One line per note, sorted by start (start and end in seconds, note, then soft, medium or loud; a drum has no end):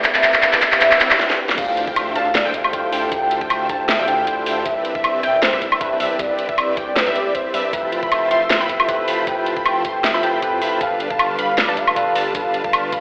0.00 0.02 C3 medium
0.00 0.39 C3 medium
0.00 0.03 C4 medium
0.00 0.40 C4 medium
0.00 0.31 C4 medium
0.00 0.04 D4 medium
0.00 0.05 E4 medium
0.00 0.06 B4 medium
0.00 0.31 B4 medium
0.00 kick loud
0.00 clap medium
0.00 closed hi-hat medium
0.00 riser medium
0.04 0.41 D4 medium
0.04 0.42 E4 medium
0.04 0.31 G4 medium
0.04 0.42 B4 medium
0.04 0.31 D5 medium
0.04 0.31 E5 medium
0.04 0.30 E5 loud
0.14 clap medium
0.23 clap medium
0.23 closed hi-hat medium
0.34 0.41 C4 medium
0.34 0.41 G4 medium
0.34 0.41 B4 medium
0.34 0.41 D5 medium
0.34 0.41 E5 loud
0.34 0.41 E5 medium
0.34 kick loud
0.34 clap medium
0.41 0.78 C3 medium
0.41 0.79 C4 medium
0.41 0.70 C4 medium
0.41 0.80 D4 medium
0.41 0.80 E4 medium
0.41 0.70 G4 medium
0.41 0.70 B4 medium
0.41 0.70 D5 medium
0.41 0.70 E5 medium
0.41 0.68 E5 loud
0.41 clap medium
0.41 closed hi-hat medium
0.45 0.81 B4 medium
0.53 clap medium
0.62 kick loud
0.62 clap medium
0.62 closed hi-hat medium
0.72 0.79 C4 loud
0.72 0.80 G4 medium
0.72 0.79 B4 medium
0.72 0.79 D5 medium
0.72 0.79 E5 loud
0.72 0.80 E5 loud
0.72 clap medium
0.79 0.97 C3 medium
0.79 0.98 C4 medium
0.79 0.99 C4 medium
0.79 0.99 D4 medium
0.79 0.99 E4 medium
0.79 0.99 G4 medium
0.79 0.99 B4 medium
0.79 0.99 D5 medium
0.79 0.99 E5 loud
0.79 clap loud
0.79 closed hi-hat medium
0.83 1.00 B4 medium
0.91 clap medium
0.98 1.17 C3 medium
0.98 1.17 C4 medium
0.98 1.18 C4 medium
0.98 1.18 D4 medium
0.98 1.18 E4 medium
0.98 1.18 G4 medium
0.98 1.18 B4 medium
0.98 1.18 D5 medium
0.98 1.18 E5 loud
0.98 1.18 E5 medium
0.98 clap loud
0.98 closed hi-hat medium
1.02 1.19 B4 medium
1.10 clap medium
1.19 snare medium
1.30 snare medium
1.49 snare medium
1.56 1.85 D2 medium
1.56 2.51 D3 medium
1.56 2.51 D4 medium
1.56 1.85 D4 medium
1.56 2.52 E4 medium
1.56 2.52 F4 medium
1.56 2.53 G4 medium
1.56 1.85 A4 medium
1.56 1.85 C5 medium
1.56 2.53 C5 medium
1.56 1.85 E5 medium
1.56 1.83 F5 loud
1.56 1.85 F5 medium
1.56 1.85 G5 medium
1.56 kick loud
1.56 closed hi-hat medium
1.56 crash loud
1.56 impact medium
1.77 closed hi-hat medium
1.87 2.14 D2 loud
1.87 2.13 D4 medium
1.87 2.13 A4 medium
1.87 2.13 C5 medium
1.87 2.13 E5 medium
1.87 2.12 F5 medium
1.87 2.13 F5 medium
1.87 2.13 G5 loud
1.87 kick loud
1.96 closed hi-hat medium
1.96 high woodblock medium
2.15 2.43 D2 loud
2.15 2.29 D4 medium
2.15 2.29 A4 medium
2.15 2.29 C5 medium
2.15 2.29 E5 medium
2.15 2.32 F5 medium
2.15 2.29 F5 medium
2.15 2.29 A5 loud
2.15 closed hi-hat medium
2.35 2.56 D5 medium
2.35 snare loud
2.35 closed hi-hat medium
2.45 2.71 D2 loud
2.45 2.71 D4 medium
2.45 2.71 A4 medium
2.45 2.71 C5 medium
2.45 2.71 E5 medium
2.45 2.71 F5 medium
2.45 2.71 G5 loud
2.53 2.71 D3 medium
2.53 2.71 D4 medium
2.53 2.71 E4 medium
2.53 2.71 F4 medium
2.53 2.71 G4 medium
2.53 2.72 C5 medium
2.53 2.71 F5 medium
2.53 kick medium
2.53 closed hi-hat medium
2.64 high woodblock medium
2.72 2.91 D2 loud
2.72 3.08 D3 loud
2.72 3.09 D4 medium
2.72 2.90 D4 loud
2.72 3.09 E4 medium
2.72 3.10 F4 medium
2.72 3.10 G4 medium
2.72 2.90 A4 medium
2.72 2.90 C5 medium
2.72 3.10 C5 loud
2.72 2.90 E5 medium
2.72 2.90 F5 medium
2.72 2.90 G5 loud
2.72 kick loud
2.72 closed hi-hat medium
2.92 3.10 D2 medium
2.92 3.10 D4 medium
2.92 3.10 A4 medium
2.92 3.10 C5 medium
2.92 3.10 E5 medium
2.92 3.10 F5 medium
2.92 3.10 G5 loud
2.92 3.10 G5 medium
2.92 open hi-hat loud
3.10 3.39 D2 loud
3.10 4.05 D3 medium
3.10 4.05 D4 medium
3.10 3.39 D4 medium
3.10 4.06 E4 medium
3.10 4.06 F4 medium
3.10 4.06 G4 medium
3.10 3.39 A4 medium
3.10 3.39 C5 medium
3.10 3.39 E5 medium
3.10 3.39 F5 medium
3.10 3.39 G5 medium
3.10 3.37 G5 loud
3.10 kick loud
3.10 closed hi-hat medium
3.14 4.07 C5 medium
3.31 closed hi-hat medium
3.41 3.68 D2 loud
3.41 3.67 D4 medium
3.41 3.67 A4 medium
3.41 3.67 C5 medium
3.41 3.67 E5 medium
3.41 3.67 F5 medium
3.41 3.67 G5 loud
3.41 3.66 G5 loud
3.41 kick loud
3.50 closed hi-hat medium
3.50 high woodblock medium
3.69 3.97 D2 loud
3.69 3.83 D4 loud
3.69 3.83 A4 medium
3.69 3.83 C5 medium
3.69 3.83 E5 medium
3.69 3.83 F5 medium
3.69 3.86 G5 medium
3.69 3.83 A5 loud
3.69 kick loud
3.69 closed hi-hat medium
3.89 4.05 E5 medium
3.89 snare loud
3.89 closed hi-hat medium
3.99 4.25 D2 medium
3.99 4.25 D4 loud
3.99 4.25 A4 medium
3.99 4.25 C5 medium
3.99 4.25 E5 medium
3.99 4.25 F5 medium
3.99 4.25 G5 loud
4.07 4.24 D3 medium
4.07 4.25 D4 medium
4.07 4.25 E4 medium
4.07 4.25 F4 medium
4.07 4.25 G4 medium
4.07 4.25 C5 medium
4.07 4.25 G5 medium
4.07 closed hi-hat medium
4.26 4.45 D2 loud
4.26 4.63 D3 loud
4.26 4.63 D4 loud
4.26 4.44 D4 medium
4.26 4.63 E4 medium
4.26 4.64 F4 medium
4.26 4.64 G4 medium
4.26 4.44 A4 medium
4.26 4.44 C5 medium
4.26 4.64 C5 loud
4.26 4.44 E5 medium
4.26 4.44 F5 medium
4.26 4.44 G5 medium
4.26 4.44 G5 loud
4.26 kick medium
4.26 closed hi-hat medium
4.46 4.64 D2 loud
4.46 4.63 D4 medium
4.46 4.64 A4 medium
4.46 4.64 C5 medium
4.46 4.64 E5 medium
4.46 4.64 F5 medium
4.46 4.63 G5 loud
4.46 4.63 G5 medium
4.46 open hi-hat medium
4.64 4.93 C2 loud
4.64 5.59 C3 medium
4.64 5.59 C4 medium
4.64 4.93 C4 medium
4.64 5.60 D4 medium
4.64 5.60 E4 medium
4.64 4.93 G4 medium
4.64 4.93 B4 medium
4.64 4.93 D5 medium
4.64 4.91 E5 loud
4.64 4.93 E5 medium
4.64 kick loud
4.64 closed hi-hat medium
4.68 5.61 B4 medium
4.85 closed hi-hat medium
4.95 5.21 C2 loud
4.95 5.21 C4 medium
4.95 5.21 G4 medium
4.95 5.21 B4 medium
4.95 5.21 D5 medium
4.95 5.20 E5 medium
4.95 5.21 E5 loud
4.95 kick loud
5.04 closed hi-hat medium
5.04 high woodblock medium
5.23 5.51 C2 medium
5.23 5.37 C4 medium
5.23 5.37 G4 medium
5.23 5.37 B4 medium
5.23 5.37 D5 medium
5.23 5.40 E5 loud
5.23 5.37 G5 loud
5.23 closed hi-hat medium
5.42 5.59 C5 medium
5.42 snare loud
5.42 closed hi-hat medium
5.53 5.79 C2 loud
5.53 5.79 C4 loud
5.53 5.79 G4 medium
5.53 5.79 B4 medium
5.53 5.79 D5 medium
5.53 5.79 E5 loud
5.61 5.78 C3 medium
5.61 5.79 C4 medium
5.61 5.79 D4 medium
5.61 5.79 E4 medium
5.61 5.79 B4 medium
5.61 5.79 E5 loud
5.61 kick medium
5.61 closed hi-hat medium
5.72 high woodblock medium
5.80 5.98 C2 medium
5.80 6.16 C3 loud
5.80 6.17 C4 medium
5.80 5.98 C4 loud
5.80 6.17 D4 loud
5.80 6.17 E4 medium
5.80 5.98 G4 medium
5.80 5.98 B4 medium
5.80 6.18 B4 loud
5.80 5.98 D5 medium
5.80 5.98 E5 loud
5.80 5.98 E5 medium
5.80 5.98 E5 loud
5.80 kick loud
5.80 closed hi-hat medium
6.00 6.18 C2 medium
6.00 6.17 C4 medium
6.00 6.17 G4 medium
6.00 6.17 B4 medium
6.00 6.17 D5 medium
6.00 6.17 E5 loud
6.00 6.17 E5 medium
6.00 open hi-hat medium
6.17 6.47 C2 loud
6.17 7.12 C3 medium
6.17 7.13 C4 medium
6.17 6.47 C4 medium
6.17 7.13 D4 medium
6.17 7.14 E4 medium
6.17 6.46 G4 medium
6.17 6.46 B4 medium
6.17 6.45 D5 loud
6.17 6.47 D5 medium
6.17 6.46 E5 medium
6.17 6.47 E5 medium
6.17 kick loud
6.17 closed hi-hat medium
6.21 7.14 B4 medium
6.39 closed hi-hat medium
6.49 6.75 C2 loud
6.49 6.75 C4 loud
6.49 6.75 G4 medium
6.49 6.75 B4 medium
6.49 6.75 D5 medium
6.49 6.74 D5 medium
6.49 6.75 E5 loud
6.49 kick loud
6.58 closed hi-hat medium
6.58 high woodblock medium
6.77 7.05 C2 loud
6.77 6.91 C4 loud
6.77 6.91 G4 medium
6.77 6.91 B4 medium
6.77 6.91 D5 medium
6.77 6.98 D5 medium
6.77 6.91 G5 loud
6.77 kick loud
6.77 closed hi-hat medium
6.96 7.13 B4 medium
6.96 snare loud
6.96 closed hi-hat medium
7.07 7.33 C2 loud
7.07 7.33 C4 medium
7.07 7.33 G4 medium
7.07 7.33 B4 medium
7.07 7.33 D5 medium
7.07 7.33 E5 loud
7.16 7.32 D5 medium
7.16 closed hi-hat medium
7.35 7.52 C2 loud
7.35 7.52 C4 medium
7.35 7.52 G4 medium
7.35 7.52 B4 medium
7.35 7.52 C5 medium
7.35 7.52 D5 medium
7.35 7.52 E5 loud
7.35 kick medium
7.35 closed hi-hat medium
7.53 7.71 C2 medium
7.53 7.71 C3 medium
7.53 7.71 C4 medium
7.53 7.71 D4 medium
7.53 7.71 E4 medium
7.53 7.71 G4 medium
7.53 7.71 B4 medium
7.53 7.72 B4 medium
7.53 7.71 D5 medium
7.53 7.71 E5 loud
7.53 open hi-hat medium
7.71 8.01 F1 loud
7.71 8.66 F3 medium
7.71 8.67 C4 medium
7.71 8.67 E4 medium
7.71 8.00 F4 medium
7.71 8.67 G4 medium
7.71 8.68 A4 medium
7.71 8.00 C5 medium
7.71 7.99 E5 loud
7.71 8.00 E5 medium
7.71 8.00 G5 medium
7.71 8.00 A5 medium
7.71 8.00 B5 medium
7.71 kick loud
7.71 closed hi-hat medium
7.75 8.68 B4 medium
7.92 closed hi-hat medium
8.03 8.29 F1 loud
8.03 8.29 F4 loud
8.03 8.29 C5 medium
8.03 8.27 E5 medium
8.03 8.29 E5 medium
8.03 8.29 G5 medium
8.03 8.29 A5 medium
8.03 8.29 B5 loud
8.03 kick loud
8.12 closed hi-hat medium
8.12 high woodblock medium
8.31 8.58 F1 medium
8.31 8.45 F4 medium
8.31 8.45 C5 medium
8.31 8.48 E5 loud
8.31 8.45 E5 medium
8.31 8.45 G5 medium
8.31 8.45 A5 medium
8.31 8.45 C6 loud
8.31 closed hi-hat medium
8.50 8.67 C5 medium
8.50 snare loud
8.50 closed hi-hat medium
8.60 8.87 F1 medium
8.60 8.86 F4 loud
8.60 8.86 C5 medium
8.60 8.87 E5 medium
8.60 8.86 G5 medium
8.60 8.87 A5 medium
8.60 8.86 B5 loud
8.68 8.86 F3 medium
8.68 8.86 C4 medium
8.68 8.86 E4 medium
8.68 8.87 G4 medium
8.68 8.87 A4 medium
8.68 8.87 B4 medium
8.68 8.86 E5 medium
8.68 kick medium
8.68 closed hi-hat medium
8.80 high woodblock medium
8.87 9.06 F1 medium
8.87 9.24 F3 loud
8.87 9.25 C4 medium
8.87 9.25 E4 medium
8.87 9.06 F4 medium
8.87 9.25 G4 medium
8.87 9.25 A4 medium
8.87 9.25 B4 loud
8.87 9.06 C5 medium
8.87 9.06 E5 medium
8.87 9.06 E5 loud
8.87 9.06 G5 medium
8.87 9.06 A5 medium
8.87 9.06 B5 loud
8.87 kick loud
8.87 closed hi-hat medium
9.08 9.25 F1 medium
9.08 9.25 F4 medium
9.08 9.25 C5 medium
9.08 9.25 E5 medium
9.08 9.25 G5 medium
9.08 9.25 A5 medium
9.08 9.25 B5 loud
9.08 open hi-hat medium
9.25 9.55 F1 loud
9.25 10.20 F3 medium
9.25 10.20 C4 medium
9.25 10.21 E4 medium
9.25 9.54 F4 medium
9.25 10.21 G4 medium
9.25 10.22 A4 medium
9.25 9.54 C5 medium
9.25 9.54 E5 medium
9.25 9.54 G5 medium
9.25 9.53 G5 loud
9.25 9.54 A5 medium
9.25 9.54 B5 medium
9.25 9.54 B5 loud
9.25 kick loud
9.25 closed hi-hat medium
9.29 10.22 B4 medium
9.46 closed hi-hat medium
9.57 9.83 F1 loud
9.57 9.83 F4 loud
9.57 9.83 C5 medium
9.57 9.83 E5 medium
9.57 9.83 G5 medium
9.57 9.81 G5 medium
9.57 9.83 A5 medium
9.57 9.83 B5 loud
9.57 kick loud
9.66 closed hi-hat medium
9.66 high woodblock medium
9.85 10.12 F1 medium
9.85 9.98 F4 medium
9.85 9.98 C5 medium
9.85 9.98 E5 medium
9.85 9.98 G5 medium
9.85 10.02 G5 medium
9.85 9.98 A5 medium
9.85 9.98 C6 loud
9.85 kick medium
9.85 closed hi-hat medium
10.04 10.21 E5 medium
10.04 snare loud
10.04 closed hi-hat medium
10.14 10.41 F1 loud
10.14 10.40 F4 medium
10.14 10.40 C5 medium
10.14 10.40 E5 medium
10.14 10.40 G5 medium
10.14 10.40 A5 medium
10.14 10.40 B5 loud
10.22 10.40 F3 medium
10.22 10.40 C4 medium
10.22 10.40 E4 medium
10.22 10.40 G4 medium
10.22 10.41 A4 medium
10.22 10.41 B4 medium
10.22 10.40 G5 medium
10.22 closed hi-hat medium
10.41 10.60 F2 medium
10.41 10.78 F3 loud
10.41 10.79 C4 loud
10.41 10.79 E4 medium
10.41 10.60 F4 loud
10.41 10.79 G4 loud
10.41 10.79 A4 medium
10.41 10.79 B4 loud
10.41 10.60 C5 medium
10.41 10.60 E5 medium
10.41 10.59 G5 medium
10.41 10.60 G5 medium
10.41 10.60 A5 medium
10.41 10.60 B5 loud
10.41 10.60 B5 medium
10.41 kick medium
10.41 closed hi-hat medium
10.62 10.79 F1 loud
10.62 10.79 F4 medium
10.62 10.79 C5 medium
10.62 10.79 E5 medium
10.62 10.79 G5 medium
10.62 10.79 A5 medium
10.62 10.79 B5 loud
10.62 open hi-hat medium
10.79 11.08 G1 loud
10.79 11.74 G3 medium
10.79 11.08 G3 medium
10.79 11.74 D4 medium
10.79 11.08 D4 medium
10.79 11.75 F4 medium
10.79 11.75 A4 medium
10.79 11.08 B4 medium
10.79 11.76 B4 medium
10.79 11.06 F5 loud
10.79 11.08 F5 medium
10.79 11.08 A5 medium
10.79 kick loud
10.79 closed hi-hat medium
11.00 closed hi-hat medium
11.10 11.37 G1 loud
11.10 11.37 G3 medium
11.10 11.37 D4 medium
11.10 11.37 B4 medium
11.10 11.37 F5 medium
11.10 11.35 F5 medium
11.10 11.36 A5 loud
11.10 11.37 A5 loud
11.10 kick loud
11.19 closed hi-hat medium
11.19 high woodblock medium
11.39 11.66 G1 loud
11.39 11.52 G3 medium
11.39 11.52 D4 medium
11.39 11.52 B4 medium
11.39 11.52 F5 medium
11.39 11.56 F5 medium
11.39 11.52 B5 loud
11.39 closed hi-hat medium
11.58 11.79 D5 medium
11.58 snare loud
11.58 closed hi-hat medium
11.68 11.94 G1 loud
11.68 11.94 G3 loud
11.68 11.94 D4 medium
11.68 11.94 B4 medium
11.68 11.94 F5 medium
11.68 11.94 A5 loud
11.76 11.94 G3 medium
11.76 11.94 D4 medium
11.76 11.94 F4 medium
11.76 11.94 A4 medium
11.76 11.95 B4 medium
11.76 11.94 F5 medium
11.76 kick medium
11.76 closed hi-hat medium
11.87 high woodblock medium
11.95 12.14 G1 loud
11.95 12.32 G3 loud
11.95 12.13 G3 medium
11.95 12.32 D4 loud
11.95 12.13 D4 medium
11.95 12.33 F4 loud
11.95 12.33 A4 loud
11.95 12.13 B4 medium
11.95 12.33 B4 loud
11.95 12.13 F5 medium
11.95 12.13 A5 medium
11.95 12.13 A5 loud
11.95 kick loud
11.95 closed hi-hat medium
12.15 12.33 G1 loud
12.15 12.33 G3 medium
12.15 12.33 D4 medium
12.15 12.33 B4 medium
12.15 12.33 F5 medium
12.15 12.33 A5 loud
12.15 open hi-hat medium
12.33 12.62 G1 loud
12.33 13.00 G3 medium
12.33 12.62 G3 medium
12.33 13.00 D4 medium
12.33 12.62 D4 medium
12.33 13.00 F4 medium
12.33 13.00 A4 medium
12.33 12.62 B4 medium
12.33 13.00 B4 medium
12.33 12.62 F5 medium
12.33 12.60 F5 loud
12.33 12.62 A5 loud
12.33 12.62 A5 medium
12.33 kick loud
12.33 closed hi-hat medium
12.54 closed hi-hat medium
12.64 12.91 G1 loud
12.64 12.90 G3 medium
12.64 12.90 D4 medium
12.64 12.90 B4 medium
12.64 12.90 F5 medium
12.64 12.89 F5 medium
12.64 12.90 A5 loud
12.64 kick loud
12.73 closed hi-hat medium
12.73 high woodblock medium
12.93 13.00 G1 medium
12.93 13.00 G3 loud
12.93 13.00 D4 medium
12.93 13.00 B4 medium
12.93 13.00 F5 medium
12.93 13.00 B5 loud
12.93 kick loud
12.93 closed hi-hat medium